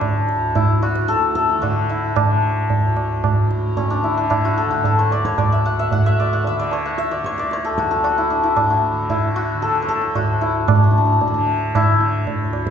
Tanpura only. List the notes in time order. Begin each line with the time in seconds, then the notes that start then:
Already playing: D2 A2 D3
0.35 D2
0.96 A2
1.58 D3
2.20 D3
2.81 D2
3.41 A2
4.04 D3
4.65 D3
5.26 D2
5.88 A2
6.50 D3
7.10 D3
7.71 D2
8.31 A2
8.92 D3
9.53 D3
10.14 D2
10.69 A2
11.30 D3
11.89 D3
12.50 D2